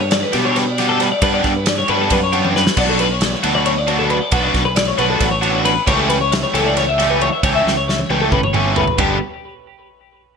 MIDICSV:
0, 0, Header, 1, 5, 480
1, 0, Start_track
1, 0, Tempo, 443131
1, 1331, Time_signature, 7, 3, 24, 8
1, 11232, End_track
2, 0, Start_track
2, 0, Title_t, "Clean electric guitar"
2, 0, Program_c, 0, 27
2, 5, Note_on_c, 0, 73, 78
2, 123, Note_off_c, 0, 73, 0
2, 128, Note_on_c, 0, 74, 84
2, 248, Note_on_c, 0, 71, 80
2, 249, Note_off_c, 0, 74, 0
2, 370, Note_off_c, 0, 71, 0
2, 370, Note_on_c, 0, 67, 82
2, 488, Note_on_c, 0, 73, 80
2, 490, Note_off_c, 0, 67, 0
2, 610, Note_off_c, 0, 73, 0
2, 610, Note_on_c, 0, 71, 89
2, 731, Note_off_c, 0, 71, 0
2, 731, Note_on_c, 0, 74, 76
2, 959, Note_off_c, 0, 74, 0
2, 963, Note_on_c, 0, 69, 74
2, 1093, Note_off_c, 0, 69, 0
2, 1093, Note_on_c, 0, 71, 84
2, 1207, Note_off_c, 0, 71, 0
2, 1211, Note_on_c, 0, 74, 71
2, 1326, Note_off_c, 0, 74, 0
2, 1330, Note_on_c, 0, 71, 99
2, 1446, Note_off_c, 0, 71, 0
2, 1450, Note_on_c, 0, 74, 76
2, 1693, Note_off_c, 0, 74, 0
2, 1693, Note_on_c, 0, 71, 74
2, 1808, Note_off_c, 0, 71, 0
2, 1808, Note_on_c, 0, 74, 86
2, 1926, Note_off_c, 0, 74, 0
2, 1930, Note_on_c, 0, 73, 79
2, 2048, Note_off_c, 0, 73, 0
2, 2052, Note_on_c, 0, 71, 80
2, 2172, Note_off_c, 0, 71, 0
2, 2179, Note_on_c, 0, 69, 77
2, 2295, Note_off_c, 0, 69, 0
2, 2299, Note_on_c, 0, 71, 90
2, 2414, Note_off_c, 0, 71, 0
2, 2419, Note_on_c, 0, 73, 75
2, 2655, Note_off_c, 0, 73, 0
2, 2776, Note_on_c, 0, 71, 80
2, 3012, Note_off_c, 0, 71, 0
2, 3012, Note_on_c, 0, 74, 96
2, 3131, Note_on_c, 0, 69, 72
2, 3132, Note_off_c, 0, 74, 0
2, 3250, Note_on_c, 0, 71, 89
2, 3252, Note_off_c, 0, 69, 0
2, 3376, Note_off_c, 0, 71, 0
2, 3376, Note_on_c, 0, 73, 76
2, 3489, Note_off_c, 0, 73, 0
2, 3489, Note_on_c, 0, 74, 88
2, 3609, Note_off_c, 0, 74, 0
2, 3609, Note_on_c, 0, 73, 73
2, 3728, Note_off_c, 0, 73, 0
2, 3728, Note_on_c, 0, 69, 82
2, 3841, Note_off_c, 0, 69, 0
2, 3845, Note_on_c, 0, 74, 81
2, 3957, Note_off_c, 0, 74, 0
2, 3961, Note_on_c, 0, 73, 86
2, 4085, Note_off_c, 0, 73, 0
2, 4085, Note_on_c, 0, 74, 77
2, 4321, Note_on_c, 0, 69, 72
2, 4329, Note_off_c, 0, 74, 0
2, 4442, Note_on_c, 0, 71, 81
2, 4447, Note_off_c, 0, 69, 0
2, 4562, Note_off_c, 0, 71, 0
2, 4562, Note_on_c, 0, 74, 69
2, 4679, Note_off_c, 0, 74, 0
2, 4679, Note_on_c, 0, 71, 97
2, 4795, Note_off_c, 0, 71, 0
2, 4795, Note_on_c, 0, 74, 73
2, 5035, Note_off_c, 0, 74, 0
2, 5039, Note_on_c, 0, 71, 78
2, 5151, Note_off_c, 0, 71, 0
2, 5155, Note_on_c, 0, 74, 86
2, 5285, Note_off_c, 0, 74, 0
2, 5285, Note_on_c, 0, 73, 80
2, 5397, Note_off_c, 0, 73, 0
2, 5401, Note_on_c, 0, 71, 82
2, 5525, Note_on_c, 0, 69, 80
2, 5527, Note_off_c, 0, 71, 0
2, 5642, Note_on_c, 0, 71, 94
2, 5649, Note_off_c, 0, 69, 0
2, 5751, Note_off_c, 0, 71, 0
2, 5755, Note_on_c, 0, 73, 81
2, 6004, Note_off_c, 0, 73, 0
2, 6121, Note_on_c, 0, 71, 85
2, 6357, Note_off_c, 0, 71, 0
2, 6362, Note_on_c, 0, 73, 102
2, 6476, Note_off_c, 0, 73, 0
2, 6476, Note_on_c, 0, 69, 78
2, 6597, Note_off_c, 0, 69, 0
2, 6601, Note_on_c, 0, 71, 85
2, 6722, Note_off_c, 0, 71, 0
2, 6727, Note_on_c, 0, 73, 79
2, 6844, Note_off_c, 0, 73, 0
2, 6844, Note_on_c, 0, 76, 96
2, 6964, Note_off_c, 0, 76, 0
2, 6969, Note_on_c, 0, 73, 81
2, 7088, Note_on_c, 0, 69, 86
2, 7091, Note_off_c, 0, 73, 0
2, 7211, Note_off_c, 0, 69, 0
2, 7218, Note_on_c, 0, 74, 79
2, 7331, Note_off_c, 0, 74, 0
2, 7335, Note_on_c, 0, 73, 93
2, 7455, Note_off_c, 0, 73, 0
2, 7460, Note_on_c, 0, 76, 78
2, 7694, Note_on_c, 0, 71, 77
2, 7697, Note_off_c, 0, 76, 0
2, 7814, Note_off_c, 0, 71, 0
2, 7820, Note_on_c, 0, 73, 91
2, 7932, Note_off_c, 0, 73, 0
2, 7936, Note_on_c, 0, 76, 73
2, 8050, Note_off_c, 0, 76, 0
2, 8054, Note_on_c, 0, 73, 97
2, 8174, Note_off_c, 0, 73, 0
2, 8179, Note_on_c, 0, 76, 72
2, 8413, Note_off_c, 0, 76, 0
2, 8417, Note_on_c, 0, 73, 74
2, 8539, Note_off_c, 0, 73, 0
2, 8539, Note_on_c, 0, 76, 86
2, 8659, Note_off_c, 0, 76, 0
2, 8659, Note_on_c, 0, 73, 78
2, 8778, Note_off_c, 0, 73, 0
2, 8778, Note_on_c, 0, 71, 84
2, 8896, Note_off_c, 0, 71, 0
2, 8899, Note_on_c, 0, 69, 83
2, 9016, Note_off_c, 0, 69, 0
2, 9017, Note_on_c, 0, 71, 90
2, 9136, Note_off_c, 0, 71, 0
2, 9140, Note_on_c, 0, 73, 77
2, 9377, Note_off_c, 0, 73, 0
2, 9506, Note_on_c, 0, 71, 80
2, 9740, Note_off_c, 0, 71, 0
2, 9746, Note_on_c, 0, 67, 89
2, 9963, Note_off_c, 0, 67, 0
2, 11232, End_track
3, 0, Start_track
3, 0, Title_t, "Overdriven electric guitar"
3, 0, Program_c, 1, 29
3, 359, Note_on_c, 1, 67, 106
3, 369, Note_on_c, 1, 62, 98
3, 371, Note_on_c, 1, 59, 89
3, 378, Note_on_c, 1, 55, 77
3, 677, Note_off_c, 1, 67, 0
3, 682, Note_off_c, 1, 62, 0
3, 683, Note_off_c, 1, 59, 0
3, 686, Note_off_c, 1, 55, 0
3, 849, Note_on_c, 1, 67, 104
3, 852, Note_on_c, 1, 62, 92
3, 854, Note_on_c, 1, 59, 85
3, 860, Note_on_c, 1, 55, 83
3, 1162, Note_off_c, 1, 67, 0
3, 1163, Note_off_c, 1, 62, 0
3, 1164, Note_off_c, 1, 59, 0
3, 1167, Note_off_c, 1, 55, 0
3, 1321, Note_on_c, 1, 55, 88
3, 1328, Note_on_c, 1, 59, 101
3, 1330, Note_on_c, 1, 62, 101
3, 1330, Note_on_c, 1, 67, 110
3, 1638, Note_off_c, 1, 55, 0
3, 1642, Note_off_c, 1, 59, 0
3, 1642, Note_off_c, 1, 67, 0
3, 1643, Note_off_c, 1, 62, 0
3, 2043, Note_on_c, 1, 67, 96
3, 2054, Note_on_c, 1, 62, 99
3, 2056, Note_on_c, 1, 59, 86
3, 2058, Note_on_c, 1, 55, 80
3, 2360, Note_off_c, 1, 67, 0
3, 2365, Note_off_c, 1, 62, 0
3, 2366, Note_off_c, 1, 59, 0
3, 2367, Note_off_c, 1, 55, 0
3, 2518, Note_on_c, 1, 67, 106
3, 2527, Note_on_c, 1, 59, 87
3, 2528, Note_on_c, 1, 62, 90
3, 2532, Note_on_c, 1, 55, 84
3, 2837, Note_off_c, 1, 67, 0
3, 2841, Note_off_c, 1, 59, 0
3, 2842, Note_off_c, 1, 62, 0
3, 2844, Note_off_c, 1, 55, 0
3, 3004, Note_on_c, 1, 54, 91
3, 3008, Note_on_c, 1, 59, 92
3, 3013, Note_on_c, 1, 62, 107
3, 3015, Note_on_c, 1, 66, 101
3, 3320, Note_off_c, 1, 54, 0
3, 3322, Note_off_c, 1, 59, 0
3, 3324, Note_off_c, 1, 62, 0
3, 3326, Note_off_c, 1, 66, 0
3, 3718, Note_on_c, 1, 66, 105
3, 3726, Note_on_c, 1, 59, 89
3, 3726, Note_on_c, 1, 62, 94
3, 3733, Note_on_c, 1, 54, 82
3, 4038, Note_off_c, 1, 66, 0
3, 4041, Note_off_c, 1, 59, 0
3, 4041, Note_off_c, 1, 62, 0
3, 4045, Note_off_c, 1, 54, 0
3, 4195, Note_on_c, 1, 66, 102
3, 4196, Note_on_c, 1, 62, 99
3, 4200, Note_on_c, 1, 59, 87
3, 4206, Note_on_c, 1, 54, 84
3, 4516, Note_off_c, 1, 62, 0
3, 4516, Note_off_c, 1, 66, 0
3, 4518, Note_off_c, 1, 59, 0
3, 4522, Note_off_c, 1, 54, 0
3, 4680, Note_on_c, 1, 54, 94
3, 4683, Note_on_c, 1, 62, 102
3, 4684, Note_on_c, 1, 59, 100
3, 4696, Note_on_c, 1, 66, 104
3, 4999, Note_off_c, 1, 54, 0
3, 5000, Note_off_c, 1, 62, 0
3, 5001, Note_off_c, 1, 59, 0
3, 5007, Note_off_c, 1, 66, 0
3, 5395, Note_on_c, 1, 66, 100
3, 5396, Note_on_c, 1, 59, 96
3, 5400, Note_on_c, 1, 62, 102
3, 5405, Note_on_c, 1, 54, 83
3, 5716, Note_off_c, 1, 66, 0
3, 5717, Note_off_c, 1, 59, 0
3, 5719, Note_off_c, 1, 62, 0
3, 5721, Note_off_c, 1, 54, 0
3, 5865, Note_on_c, 1, 66, 101
3, 5867, Note_on_c, 1, 62, 102
3, 5876, Note_on_c, 1, 54, 76
3, 5876, Note_on_c, 1, 59, 80
3, 6191, Note_off_c, 1, 66, 0
3, 6193, Note_off_c, 1, 62, 0
3, 6197, Note_off_c, 1, 54, 0
3, 6197, Note_off_c, 1, 59, 0
3, 6354, Note_on_c, 1, 52, 99
3, 6364, Note_on_c, 1, 57, 105
3, 6366, Note_on_c, 1, 67, 98
3, 6367, Note_on_c, 1, 61, 109
3, 6676, Note_off_c, 1, 52, 0
3, 6681, Note_off_c, 1, 57, 0
3, 6682, Note_off_c, 1, 61, 0
3, 6682, Note_off_c, 1, 67, 0
3, 7080, Note_on_c, 1, 67, 97
3, 7082, Note_on_c, 1, 61, 98
3, 7085, Note_on_c, 1, 57, 97
3, 7089, Note_on_c, 1, 52, 84
3, 7399, Note_off_c, 1, 67, 0
3, 7400, Note_off_c, 1, 61, 0
3, 7402, Note_off_c, 1, 57, 0
3, 7404, Note_off_c, 1, 52, 0
3, 7564, Note_on_c, 1, 67, 108
3, 7571, Note_on_c, 1, 61, 95
3, 7572, Note_on_c, 1, 57, 89
3, 7582, Note_on_c, 1, 52, 80
3, 7881, Note_off_c, 1, 67, 0
3, 7885, Note_off_c, 1, 57, 0
3, 7885, Note_off_c, 1, 61, 0
3, 7890, Note_off_c, 1, 52, 0
3, 8056, Note_on_c, 1, 52, 92
3, 8057, Note_on_c, 1, 57, 106
3, 8059, Note_on_c, 1, 61, 100
3, 8068, Note_on_c, 1, 67, 114
3, 8367, Note_off_c, 1, 52, 0
3, 8367, Note_off_c, 1, 57, 0
3, 8369, Note_off_c, 1, 61, 0
3, 8373, Note_off_c, 1, 67, 0
3, 8771, Note_on_c, 1, 67, 103
3, 8773, Note_on_c, 1, 61, 100
3, 8780, Note_on_c, 1, 57, 92
3, 8783, Note_on_c, 1, 52, 79
3, 9084, Note_off_c, 1, 67, 0
3, 9086, Note_off_c, 1, 61, 0
3, 9089, Note_off_c, 1, 57, 0
3, 9091, Note_off_c, 1, 52, 0
3, 9248, Note_on_c, 1, 67, 105
3, 9251, Note_on_c, 1, 61, 95
3, 9255, Note_on_c, 1, 57, 82
3, 9263, Note_on_c, 1, 52, 88
3, 9563, Note_off_c, 1, 67, 0
3, 9564, Note_off_c, 1, 61, 0
3, 9567, Note_off_c, 1, 57, 0
3, 9570, Note_off_c, 1, 52, 0
3, 9726, Note_on_c, 1, 43, 99
3, 9736, Note_on_c, 1, 50, 101
3, 9736, Note_on_c, 1, 55, 107
3, 9742, Note_on_c, 1, 59, 110
3, 9748, Note_on_c, 1, 62, 123
3, 9922, Note_off_c, 1, 43, 0
3, 9927, Note_off_c, 1, 50, 0
3, 9927, Note_off_c, 1, 55, 0
3, 9930, Note_off_c, 1, 59, 0
3, 9933, Note_off_c, 1, 62, 0
3, 11232, End_track
4, 0, Start_track
4, 0, Title_t, "Fingered electric bass"
4, 0, Program_c, 2, 33
4, 0, Note_on_c, 2, 43, 115
4, 253, Note_off_c, 2, 43, 0
4, 369, Note_on_c, 2, 47, 88
4, 1181, Note_off_c, 2, 47, 0
4, 1319, Note_on_c, 2, 43, 117
4, 1527, Note_off_c, 2, 43, 0
4, 1562, Note_on_c, 2, 43, 92
4, 1971, Note_off_c, 2, 43, 0
4, 2047, Note_on_c, 2, 43, 85
4, 2251, Note_off_c, 2, 43, 0
4, 2286, Note_on_c, 2, 42, 114
4, 2896, Note_off_c, 2, 42, 0
4, 3001, Note_on_c, 2, 35, 109
4, 3614, Note_off_c, 2, 35, 0
4, 3728, Note_on_c, 2, 38, 85
4, 4541, Note_off_c, 2, 38, 0
4, 4681, Note_on_c, 2, 35, 112
4, 4889, Note_off_c, 2, 35, 0
4, 4919, Note_on_c, 2, 35, 94
4, 5330, Note_off_c, 2, 35, 0
4, 5400, Note_on_c, 2, 35, 94
4, 5608, Note_off_c, 2, 35, 0
4, 5637, Note_on_c, 2, 33, 105
4, 6252, Note_off_c, 2, 33, 0
4, 6360, Note_on_c, 2, 37, 110
4, 6974, Note_off_c, 2, 37, 0
4, 7080, Note_on_c, 2, 37, 91
4, 7896, Note_off_c, 2, 37, 0
4, 8049, Note_on_c, 2, 37, 120
4, 8254, Note_off_c, 2, 37, 0
4, 8296, Note_on_c, 2, 37, 91
4, 8701, Note_off_c, 2, 37, 0
4, 8775, Note_on_c, 2, 37, 89
4, 8977, Note_off_c, 2, 37, 0
4, 9009, Note_on_c, 2, 31, 115
4, 9619, Note_off_c, 2, 31, 0
4, 9733, Note_on_c, 2, 31, 103
4, 9957, Note_off_c, 2, 31, 0
4, 11232, End_track
5, 0, Start_track
5, 0, Title_t, "Drums"
5, 118, Note_on_c, 9, 51, 109
5, 129, Note_on_c, 9, 38, 115
5, 226, Note_off_c, 9, 51, 0
5, 238, Note_off_c, 9, 38, 0
5, 358, Note_on_c, 9, 51, 85
5, 370, Note_on_c, 9, 38, 36
5, 466, Note_off_c, 9, 51, 0
5, 478, Note_off_c, 9, 38, 0
5, 607, Note_on_c, 9, 51, 99
5, 619, Note_on_c, 9, 38, 36
5, 715, Note_off_c, 9, 51, 0
5, 727, Note_off_c, 9, 38, 0
5, 845, Note_on_c, 9, 51, 78
5, 857, Note_on_c, 9, 38, 36
5, 953, Note_off_c, 9, 51, 0
5, 965, Note_off_c, 9, 38, 0
5, 1083, Note_on_c, 9, 51, 83
5, 1095, Note_on_c, 9, 38, 35
5, 1191, Note_off_c, 9, 51, 0
5, 1203, Note_off_c, 9, 38, 0
5, 1318, Note_on_c, 9, 51, 116
5, 1322, Note_on_c, 9, 36, 125
5, 1427, Note_off_c, 9, 51, 0
5, 1430, Note_off_c, 9, 36, 0
5, 1559, Note_on_c, 9, 51, 75
5, 1563, Note_on_c, 9, 36, 79
5, 1571, Note_on_c, 9, 38, 35
5, 1667, Note_off_c, 9, 51, 0
5, 1671, Note_off_c, 9, 36, 0
5, 1679, Note_off_c, 9, 38, 0
5, 1796, Note_on_c, 9, 51, 105
5, 1808, Note_on_c, 9, 38, 116
5, 1904, Note_off_c, 9, 51, 0
5, 1916, Note_off_c, 9, 38, 0
5, 2037, Note_on_c, 9, 51, 80
5, 2145, Note_off_c, 9, 51, 0
5, 2278, Note_on_c, 9, 51, 112
5, 2283, Note_on_c, 9, 36, 102
5, 2386, Note_off_c, 9, 51, 0
5, 2392, Note_off_c, 9, 36, 0
5, 2522, Note_on_c, 9, 51, 93
5, 2630, Note_off_c, 9, 51, 0
5, 2650, Note_on_c, 9, 48, 73
5, 2758, Note_off_c, 9, 48, 0
5, 2775, Note_on_c, 9, 38, 74
5, 2883, Note_off_c, 9, 38, 0
5, 2891, Note_on_c, 9, 38, 114
5, 2997, Note_on_c, 9, 49, 109
5, 2997, Note_on_c, 9, 55, 91
5, 2999, Note_off_c, 9, 38, 0
5, 3002, Note_on_c, 9, 36, 124
5, 3106, Note_off_c, 9, 49, 0
5, 3106, Note_off_c, 9, 55, 0
5, 3111, Note_off_c, 9, 36, 0
5, 3237, Note_on_c, 9, 51, 80
5, 3346, Note_off_c, 9, 51, 0
5, 3474, Note_on_c, 9, 51, 108
5, 3486, Note_on_c, 9, 38, 112
5, 3583, Note_off_c, 9, 51, 0
5, 3595, Note_off_c, 9, 38, 0
5, 3720, Note_on_c, 9, 51, 87
5, 3829, Note_off_c, 9, 51, 0
5, 3961, Note_on_c, 9, 51, 101
5, 4069, Note_off_c, 9, 51, 0
5, 4200, Note_on_c, 9, 51, 78
5, 4308, Note_off_c, 9, 51, 0
5, 4440, Note_on_c, 9, 51, 76
5, 4549, Note_off_c, 9, 51, 0
5, 4675, Note_on_c, 9, 51, 112
5, 4681, Note_on_c, 9, 36, 122
5, 4783, Note_off_c, 9, 51, 0
5, 4790, Note_off_c, 9, 36, 0
5, 4921, Note_on_c, 9, 51, 80
5, 4922, Note_on_c, 9, 36, 82
5, 4933, Note_on_c, 9, 38, 38
5, 5029, Note_off_c, 9, 51, 0
5, 5031, Note_off_c, 9, 36, 0
5, 5041, Note_off_c, 9, 38, 0
5, 5158, Note_on_c, 9, 51, 111
5, 5170, Note_on_c, 9, 38, 117
5, 5266, Note_off_c, 9, 51, 0
5, 5278, Note_off_c, 9, 38, 0
5, 5400, Note_on_c, 9, 51, 80
5, 5508, Note_off_c, 9, 51, 0
5, 5637, Note_on_c, 9, 51, 108
5, 5641, Note_on_c, 9, 36, 108
5, 5649, Note_on_c, 9, 38, 34
5, 5745, Note_off_c, 9, 51, 0
5, 5749, Note_off_c, 9, 36, 0
5, 5757, Note_off_c, 9, 38, 0
5, 5881, Note_on_c, 9, 51, 88
5, 5990, Note_off_c, 9, 51, 0
5, 6124, Note_on_c, 9, 51, 84
5, 6232, Note_off_c, 9, 51, 0
5, 6362, Note_on_c, 9, 51, 124
5, 6363, Note_on_c, 9, 36, 116
5, 6470, Note_off_c, 9, 51, 0
5, 6472, Note_off_c, 9, 36, 0
5, 6606, Note_on_c, 9, 51, 83
5, 6714, Note_off_c, 9, 51, 0
5, 6850, Note_on_c, 9, 51, 115
5, 6861, Note_on_c, 9, 38, 115
5, 6958, Note_off_c, 9, 51, 0
5, 6970, Note_off_c, 9, 38, 0
5, 7094, Note_on_c, 9, 51, 85
5, 7203, Note_off_c, 9, 51, 0
5, 7330, Note_on_c, 9, 51, 108
5, 7342, Note_on_c, 9, 38, 36
5, 7438, Note_off_c, 9, 51, 0
5, 7450, Note_off_c, 9, 38, 0
5, 7578, Note_on_c, 9, 51, 88
5, 7590, Note_on_c, 9, 38, 38
5, 7686, Note_off_c, 9, 51, 0
5, 7698, Note_off_c, 9, 38, 0
5, 7814, Note_on_c, 9, 51, 85
5, 7922, Note_off_c, 9, 51, 0
5, 8052, Note_on_c, 9, 36, 121
5, 8052, Note_on_c, 9, 51, 118
5, 8160, Note_off_c, 9, 36, 0
5, 8160, Note_off_c, 9, 51, 0
5, 8312, Note_on_c, 9, 38, 70
5, 8420, Note_off_c, 9, 38, 0
5, 8550, Note_on_c, 9, 38, 80
5, 8658, Note_off_c, 9, 38, 0
5, 8660, Note_on_c, 9, 48, 66
5, 8769, Note_off_c, 9, 48, 0
5, 8779, Note_on_c, 9, 48, 81
5, 8888, Note_off_c, 9, 48, 0
5, 9012, Note_on_c, 9, 47, 92
5, 9013, Note_on_c, 9, 36, 112
5, 9120, Note_off_c, 9, 47, 0
5, 9122, Note_off_c, 9, 36, 0
5, 9135, Note_on_c, 9, 45, 81
5, 9244, Note_off_c, 9, 45, 0
5, 9254, Note_on_c, 9, 45, 107
5, 9362, Note_off_c, 9, 45, 0
5, 9491, Note_on_c, 9, 43, 110
5, 9599, Note_off_c, 9, 43, 0
5, 9613, Note_on_c, 9, 43, 95
5, 9722, Note_off_c, 9, 43, 0
5, 9731, Note_on_c, 9, 43, 107
5, 9731, Note_on_c, 9, 53, 94
5, 9734, Note_on_c, 9, 36, 114
5, 9840, Note_off_c, 9, 43, 0
5, 9840, Note_off_c, 9, 53, 0
5, 9842, Note_off_c, 9, 36, 0
5, 11232, End_track
0, 0, End_of_file